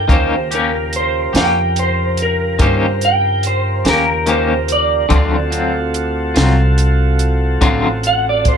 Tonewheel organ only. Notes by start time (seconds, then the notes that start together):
0.08 C#3 F4 G4 A#4
5.10 C4 F4 F#4 A4